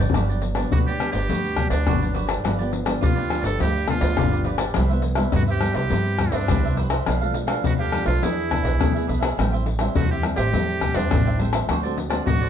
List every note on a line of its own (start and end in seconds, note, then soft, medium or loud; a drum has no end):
0.00 0.11 D3 medium
0.00 0.13 G4 medium
0.00 0.12 B4 medium
0.00 0.12 D5 medium
0.10 0.27 F#4 medium
0.10 surdo medium
0.14 0.63 G1 medium
0.14 0.69 G2 medium
0.14 0.23 F#3 medium
0.14 0.23 B3 medium
0.14 0.23 D4 medium
0.14 0.27 G4 medium
0.14 0.28 B4 soft
0.14 0.28 D5 soft
0.14 pandeiro medium
0.14 tamborim medium
0.14 maracas medium
0.14 surdo soft
0.29 0.53 F#3 medium
0.29 0.53 B3 medium
0.29 0.54 D4 medium
0.29 0.42 G4 medium
0.29 0.42 B4 medium
0.29 0.42 D5 medium
0.29 pandeiro soft
0.29 maracas soft
0.42 muted cavaquinho stroke soft
0.42 pandeiro medium
0.42 maracas medium
0.55 0.95 F#3 medium
0.55 0.96 B3 medium
0.55 0.96 D4 medium
0.55 0.70 G4 medium
0.55 0.70 B4 medium
0.55 0.70 D5 medium
0.55 pandeiro medium
0.55 tamborim medium
0.55 maracas medium
0.72 1.09 D2 medium
0.72 1.27 D3 medium
0.72 0.85 F#4 medium
0.72 0.79 F#4 medium
0.72 0.86 G4 medium
0.72 0.86 B4 medium
0.72 0.86 D5 soft
0.72 pandeiro medium
0.72 maracas medium
0.72 surdo medium
0.87 1.11 G4 loud
0.87 1.13 G4 medium
0.87 1.12 B4 medium
0.87 1.11 D5 medium
0.87 pandeiro soft
0.87 maracas soft
1.00 1.54 B3 medium
1.00 1.54 D4 medium
1.00 pandeiro medium
1.00 tamborim medium
1.00 maracas medium
1.12 1.26 G1 medium
1.12 1.67 G4 loud
1.12 1.27 G4 medium
1.12 1.27 B4 medium
1.12 1.27 D5 medium
1.12 pandeiro medium
1.12 maracas medium
1.28 1.66 D2 medium
1.28 1.84 G2 medium
1.28 1.56 F#4 soft
1.28 1.56 G4 soft
1.28 1.56 B4 medium
1.28 1.56 D5 medium
1.28 pandeiro medium
1.28 maracas medium
1.28 surdo medium
1.44 pandeiro soft
1.44 maracas soft
1.56 1.75 F#3 medium
1.56 1.75 B3 medium
1.56 1.75 D4 medium
1.56 muted cavaquinho stroke soft
1.56 pandeiro medium
1.56 tamborim medium
1.56 maracas medium
1.56 surdo medium
1.70 1.88 D2 medium
1.70 2.12 D4 medium
1.70 1.86 G4 soft
1.70 1.85 B4 medium
1.70 1.85 D5 medium
1.70 pandeiro medium
1.70 maracas medium
1.86 2.36 G1 medium
1.86 2.42 D3 medium
1.86 2.40 F#3 medium
1.86 2.40 B3 medium
1.86 2.41 D4 medium
1.86 2.00 F#4 medium
1.86 2.00 G4 medium
1.86 2.01 B4 medium
1.86 2.01 D5 medium
1.86 pandeiro medium
1.86 tamborim medium
1.86 maracas medium
1.86 surdo loud
2.02 2.13 G4 medium
2.02 2.14 B4 medium
2.02 2.14 D5 medium
2.02 pandeiro soft
2.02 maracas soft
2.14 2.28 F#4 medium
2.14 2.28 G4 medium
2.14 2.27 B4 medium
2.14 2.26 D5 medium
2.14 pandeiro medium
2.14 maracas medium
2.27 2.43 G4 medium
2.27 2.43 B4 medium
2.27 2.42 D5 medium
2.27 pandeiro medium
2.27 tamborim medium
2.27 maracas medium
2.44 2.94 G1 medium
2.44 3.00 G2 medium
2.44 2.54 F3 medium
2.44 2.54 B3 medium
2.44 2.54 D4 medium
2.44 2.58 F4 soft
2.44 2.58 G4 medium
2.44 2.58 B4 medium
2.44 2.57 D5 medium
2.44 pandeiro medium
2.44 tamborim medium
2.44 maracas medium
2.44 surdo medium
2.59 2.84 F3 medium
2.59 2.84 B3 medium
2.59 2.85 D4 medium
2.59 2.71 G4 medium
2.59 2.71 B4 medium
2.59 2.72 D5 medium
2.59 pandeiro soft
2.59 maracas soft
2.72 muted cavaquinho stroke soft
2.72 pandeiro medium
2.85 3.26 F3 medium
2.85 3.26 B3 medium
2.85 3.27 D4 medium
2.85 3.00 G4 medium
2.85 3.00 B4 medium
2.85 3.00 D5 medium
2.85 pandeiro medium
2.85 tamborim medium
2.85 maracas medium
3.01 3.40 D2 medium
3.01 3.58 D3 medium
3.01 3.15 F4 medium
3.01 3.43 F4 medium
3.01 3.15 G4 medium
3.01 3.16 B4 medium
3.01 3.14 D5 medium
3.01 pandeiro medium
3.01 maracas medium
3.01 surdo medium
3.16 3.42 G4 medium
3.16 3.41 B4 medium
3.16 3.40 D5 medium
3.16 pandeiro soft
3.16 maracas soft
3.30 3.68 F3 medium
3.30 3.69 B3 soft
3.30 3.69 D4 medium
3.30 pandeiro medium
3.30 tamborim medium
3.30 maracas medium
3.42 3.56 G1 medium
3.42 3.58 G4 medium
3.42 3.58 B4 medium
3.42 3.57 D5 medium
3.42 pandeiro medium
3.42 maracas medium
3.46 3.59 A4 medium
3.59 3.97 D2 medium
3.59 4.16 G2 medium
3.59 3.86 F4 soft
3.59 3.86 G4 soft
3.59 3.88 G4 medium
3.59 3.87 B4 medium
3.59 3.86 D5 soft
3.59 pandeiro medium
3.59 maracas medium
3.59 surdo medium
3.75 pandeiro soft
3.75 maracas soft
3.87 4.13 F3 medium
3.87 4.14 B3 medium
3.87 4.14 D4 medium
3.87 4.43 F4 medium
3.87 muted cavaquinho stroke soft
3.87 pandeiro medium
3.87 tamborim medium
3.87 surdo medium
4.01 4.19 D2 medium
4.01 4.16 G4 medium
4.01 4.16 B4 medium
4.01 4.16 D5 medium
4.01 pandeiro medium
4.01 maracas medium
4.17 4.67 G1 medium
4.17 4.73 D3 medium
4.17 4.56 F3 medium
4.17 4.56 B3 medium
4.17 4.56 D4 medium
4.17 4.31 F4 medium
4.17 4.31 G4 medium
4.17 4.31 B4 medium
4.17 4.30 D5 medium
4.17 pandeiro medium
4.17 tamborim medium
4.17 maracas medium
4.17 surdo loud
4.32 4.44 G4 medium
4.32 4.45 B4 medium
4.32 4.45 D5 medium
4.32 pandeiro soft
4.32 maracas soft
4.44 4.59 F4 soft
4.44 4.59 G4 medium
4.44 4.58 B4 medium
4.44 4.57 D5 medium
4.44 pandeiro medium
4.44 maracas medium
4.58 4.74 G4 medium
4.58 4.74 B4 medium
4.58 4.73 D5 medium
4.58 pandeiro medium
4.58 tamborim medium
4.58 maracas medium
4.74 5.25 C2 medium
4.74 5.31 C3 medium
4.74 4.85 G3 medium
4.74 4.85 B3 medium
4.74 4.85 E4 medium
4.74 4.89 G4 medium
4.74 4.89 B4 medium
4.74 4.89 C5 medium
4.74 4.88 E5 medium
4.74 pandeiro medium
4.74 tamborim medium
4.74 maracas medium
4.74 surdo medium
4.89 5.15 G3 medium
4.89 5.15 B3 medium
4.89 5.16 E4 medium
4.89 5.02 B4 medium
4.89 5.01 C5 medium
4.89 5.02 E5 medium
4.89 pandeiro soft
4.89 maracas soft
5.02 muted cavaquinho stroke soft
5.02 pandeiro medium
5.02 maracas medium
5.15 5.57 G3 medium
5.15 5.57 B3 medium
5.15 5.57 E4 medium
5.15 5.32 B4 medium
5.15 5.31 C5 medium
5.15 5.31 E5 medium
5.15 pandeiro medium
5.15 tamborim medium
5.15 maracas medium
5.32 5.89 G2 medium
5.32 5.71 G2 medium
5.32 5.46 G4 soft
5.32 5.47 B4 medium
5.32 5.46 C5 medium
5.32 5.46 E5 medium
5.32 pandeiro medium
5.32 maracas medium
5.32 surdo medium
5.36 5.42 F#4 loud
5.47 5.75 G4 loud
5.47 5.73 B4 medium
5.47 5.74 C5 medium
5.47 5.72 E5 medium
5.47 pandeiro soft
5.47 maracas soft
5.61 6.15 G3 medium
5.61 6.15 B3 medium
5.61 6.15 E4 medium
5.61 pandeiro medium
5.61 tamborim medium
5.73 5.88 C2 medium
5.73 6.35 G4 loud
5.73 5.89 B4 medium
5.73 5.89 C5 medium
5.73 5.88 E5 medium
5.73 pandeiro medium
5.73 maracas medium
5.90 6.28 G2 medium
5.90 6.46 C3 medium
5.90 6.18 G4 soft
5.90 6.19 B4 medium
5.90 6.18 C5 soft
5.90 6.19 E5 medium
5.90 pandeiro medium
5.90 maracas medium
5.90 surdo medium
6.06 pandeiro soft
6.06 maracas soft
6.19 6.44 G3 medium
6.19 6.44 B3 medium
6.19 6.44 E4 medium
6.19 muted cavaquinho stroke soft
6.19 pandeiro medium
6.19 tamborim medium
6.19 maracas medium
6.19 surdo medium
6.32 6.51 G2 medium
6.32 6.77 D4 medium
6.32 6.47 B4 medium
6.32 6.48 C5 medium
6.32 6.47 E5 medium
6.32 pandeiro medium
6.32 maracas medium
6.48 6.98 C2 medium
6.48 7.04 G2 medium
6.48 6.86 G3 soft
6.48 6.86 B3 medium
6.48 6.87 E4 medium
6.48 6.63 G4 medium
6.48 6.63 B4 medium
6.48 6.63 C5 medium
6.48 6.63 E5 medium
6.48 pandeiro medium
6.48 tamborim medium
6.48 maracas medium
6.48 surdo loud
6.64 6.77 B4 medium
6.64 6.76 C5 medium
6.64 6.77 E5 medium
6.64 pandeiro soft
6.64 maracas soft
6.77 6.91 G4 medium
6.77 6.90 B4 medium
6.77 6.91 C5 medium
6.77 6.89 E5 medium
6.77 pandeiro medium
6.90 7.05 B4 medium
6.90 7.05 C5 medium
6.90 7.05 E5 medium
6.90 pandeiro medium
6.90 tamborim medium
6.90 maracas medium
7.06 7.56 B1 medium
7.06 7.62 B2 medium
7.06 7.15 F3 medium
7.06 7.16 A3 medium
7.06 7.20 D4 soft
7.06 7.16 D4 medium
7.06 7.21 A4 soft
7.06 7.21 B4 medium
7.06 7.20 F5 medium
7.06 pandeiro medium
7.06 tamborim medium
7.06 maracas medium
7.06 surdo medium
7.21 7.46 F3 medium
7.21 7.46 A3 medium
7.21 7.46 D4 medium
7.21 7.33 A4 medium
7.21 7.33 B4 medium
7.21 7.34 F5 medium
7.21 pandeiro soft
7.21 maracas soft
7.34 muted cavaquinho stroke soft
7.34 pandeiro medium
7.34 maracas medium
7.47 7.88 F3 medium
7.47 7.88 A3 medium
7.47 7.88 D4 medium
7.47 7.63 A4 medium
7.47 7.62 B4 medium
7.47 7.62 F5 medium
7.47 pandeiro medium
7.47 tamborim medium
7.47 maracas medium
7.64 8.01 F2 medium
7.64 8.19 B2 medium
7.64 7.78 D4 medium
7.64 7.72 F#4 medium
7.64 7.78 A4 soft
7.64 7.78 B4 medium
7.64 7.78 F5 medium
7.64 pandeiro medium
7.64 maracas medium
7.64 surdo loud
7.79 8.06 G4 loud
7.79 8.06 A4 medium
7.79 8.05 B4 medium
7.79 8.04 F5 medium
7.79 pandeiro soft
7.79 maracas soft
7.92 8.19 F3 soft
7.92 8.20 A3 medium
7.92 8.20 D4 medium
7.92 pandeiro medium
7.92 tamborim medium
7.92 maracas medium
8.05 8.19 B1 medium
8.05 8.25 F4 medium
8.05 8.21 A4 medium
8.05 8.21 B4 medium
8.05 8.20 F5 medium
8.05 pandeiro medium
8.05 maracas medium
8.22 8.77 E3 medium
8.22 8.47 B3 medium
8.22 8.49 D4 soft
8.22 8.47 D4 medium
8.22 9.09 E4 medium
8.22 8.49 G#4 medium
8.22 8.47 G#4 medium
8.22 8.49 B4 medium
8.22 8.50 E5 soft
8.22 pandeiro medium
8.22 maracas medium
8.22 surdo medium
8.38 pandeiro soft
8.38 maracas soft
8.50 8.75 B3 medium
8.50 8.75 D4 soft
8.50 8.75 G#4 soft
8.50 muted cavaquinho stroke soft
8.50 pandeiro medium
8.50 tamborim medium
8.50 maracas medium
8.50 surdo medium
8.63 8.79 B1 medium
8.63 8.78 G#4 medium
8.63 8.78 B4 medium
8.63 8.77 E5 medium
8.63 pandeiro medium
8.63 maracas medium
8.79 9.06 D2 medium
8.79 9.35 B2 medium
8.79 9.17 B3 medium
8.79 8.93 D4 medium
8.79 9.17 D4 soft
8.79 8.93 G#4 medium
8.79 9.18 G#4 medium
8.79 8.93 B4 medium
8.79 8.93 E5 medium
8.79 pandeiro medium
8.79 tamborim medium
8.79 maracas medium
8.79 surdo loud
8.94 9.07 G#4 medium
8.94 9.07 B4 medium
8.94 9.08 E5 medium
8.94 pandeiro soft
8.94 maracas soft
9.07 9.35 B1 medium
9.07 9.21 D4 medium
9.07 9.21 G#4 soft
9.07 9.20 B4 medium
9.07 9.19 E5 medium
9.07 pandeiro medium
9.20 9.36 G#4 soft
9.20 9.36 B4 medium
9.20 9.35 E5 medium
9.20 pandeiro medium
9.20 tamborim medium
9.20 maracas medium
9.37 9.87 A1 medium
9.37 9.93 A2 medium
9.37 9.65 G3 medium
9.37 9.65 C4 medium
9.37 9.65 E4 medium
9.37 9.51 A4 medium
9.37 9.51 C5 soft
9.37 9.51 E5 medium
9.37 9.51 G5 medium
9.37 pandeiro medium
9.37 tamborim medium
9.37 maracas medium
9.37 surdo medium
9.52 9.64 C5 medium
9.52 9.65 E5 medium
9.52 9.65 G5 medium
9.52 pandeiro soft
9.52 maracas soft
9.66 muted cavaquinho stroke soft
9.66 pandeiro medium
9.66 maracas medium
9.79 10.19 G3 medium
9.79 10.19 C4 medium
9.79 10.20 E4 medium
9.79 9.95 C5 medium
9.79 9.94 E5 medium
9.79 9.94 G5 medium
9.79 pandeiro medium
9.79 tamborim medium
9.79 maracas medium
9.95 10.32 E2 medium
9.95 10.51 E3 medium
9.95 10.10 F#4 loud
9.95 10.09 A4 medium
9.95 10.09 C5 medium
9.95 10.09 E5 medium
9.95 10.10 G5 medium
9.95 pandeiro medium
9.95 maracas medium
9.95 surdo loud
10.11 10.24 G4 loud
10.11 10.38 C5 medium
10.11 10.37 E5 medium
10.11 10.36 G5 medium
10.11 pandeiro soft
10.11 maracas soft
10.23 10.48 G3 soft
10.23 10.49 C4 soft
10.23 10.49 E4 medium
10.23 pandeiro medium
10.23 tamborim medium
10.36 10.50 A1 medium
10.36 10.97 G4 loud
10.36 10.52 C5 medium
10.36 10.52 E5 medium
10.36 10.51 G5 medium
10.36 pandeiro medium
10.36 maracas medium
10.53 10.90 E2 medium
10.53 11.09 A2 medium
10.53 10.92 G3 medium
10.53 10.92 C4 medium
10.53 10.93 E4 medium
10.53 10.81 A4 soft
10.53 10.81 C5 soft
10.53 10.81 E5 soft
10.53 10.82 G5 medium
10.53 pandeiro medium
10.53 maracas medium
10.53 surdo medium
10.69 pandeiro soft
10.69 maracas soft
10.81 pandeiro medium
10.81 tamborim medium
10.81 maracas medium
10.81 surdo medium
10.94 11.13 E2 loud
10.94 11.35 G3 medium
10.94 11.35 C4 medium
10.94 11.40 D4 medium
10.94 11.35 E4 medium
10.94 11.10 C5 medium
10.94 11.09 E5 medium
10.94 11.09 G5 medium
10.94 pandeiro medium
10.94 maracas medium
11.11 11.60 A1 medium
11.11 11.66 E3 medium
11.11 11.24 A4 medium
11.11 11.25 C5 medium
11.11 11.25 E5 medium
11.11 11.24 G5 medium
11.11 pandeiro medium
11.11 tamborim medium
11.11 maracas medium
11.11 surdo loud
11.26 11.38 C5 medium
11.26 11.39 E5 medium
11.26 11.39 G5 medium
11.26 pandeiro soft
11.26 maracas soft
11.39 11.64 G3 medium
11.39 11.64 C4 medium
11.39 11.64 E4 medium
11.39 11.53 A4 medium
11.39 11.53 C5 medium
11.39 11.53 E5 medium
11.39 11.51 G5 medium
11.39 pandeiro medium
11.39 maracas medium
11.52 11.67 C5 soft
11.52 11.67 E5 medium
11.52 11.67 G5 medium
11.52 pandeiro medium
11.52 tamborim medium
11.52 maracas medium
11.69 12.18 D2 medium
11.69 12.24 D3 medium
11.69 11.79 A3 medium
11.69 11.79 C4 medium
11.69 11.82 F#4 medium
11.69 11.79 F#4 medium
11.69 11.82 A4 medium
11.69 11.83 C5 medium
11.69 11.82 D5 medium
11.69 pandeiro medium
11.69 tamborim medium
11.69 maracas medium
11.69 surdo medium
11.83 12.08 A3 medium
11.83 12.08 C4 medium
11.83 12.09 F#4 medium
11.83 11.96 A4 medium
11.83 11.96 C5 medium
11.83 11.96 D5 medium
11.83 pandeiro soft
11.83 maracas soft
11.97 muted cavaquinho stroke soft
11.97 pandeiro medium
12.10 12.49 A3 medium
12.10 12.49 C4 medium
12.10 12.49 F#4 medium
12.10 12.25 A4 medium
12.10 12.24 C5 medium
12.10 12.24 D5 medium
12.10 pandeiro medium
12.10 tamborim medium
12.10 maracas medium
12.26 12.49 A1 medium
12.26 12.49 A2 medium
12.26 12.39 F#4 medium
12.26 12.49 F#4 medium
12.26 12.40 A4 soft
12.26 12.40 C5 medium
12.26 12.40 D5 medium
12.26 pandeiro medium
12.26 maracas medium
12.26 surdo medium
12.41 12.49 A4 medium
12.41 12.49 C5 medium
12.41 12.49 D5 medium
12.41 pandeiro soft
12.41 maracas soft